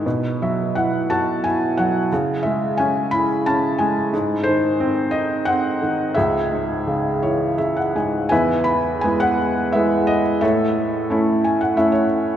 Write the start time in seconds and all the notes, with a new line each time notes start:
0.06 B2
0.42 F#3 E5
0.75 E4 F#5
1.10 F#4 A5
1.44 E4 G#5
1.77 F#3 F#5
2.12 C#3
2.43 G#3 E5
2.77 C#4 G#5
3.11 E4 B5
3.46 C#4 A5
3.78 G#3 G#5
4.13 G#2
4.43 C5
4.48 D#3
4.80 C4
5.11 D#4 D#5
5.45 C4 F#5
5.82 D#3
6.14 C#2 G#4 E5
6.52 G#2
6.87 C#3
7.22 E3 C#5
7.58 C#3 E5
7.77 F#5
7.96 G#2 G#5
8.29 E2 B4 E5 G#5
8.64 B5
9.01 G#3 B3 E4 G#5
9.20 B4 F#5
9.72 G#3 B3 E4 E5
10.07 D#5
10.41 A2 A4 C#5 E5
11.10 A3 C#4 E4
11.44 G#5
11.61 F#5
11.76 A3 C#4 E4 E5
11.92 C#5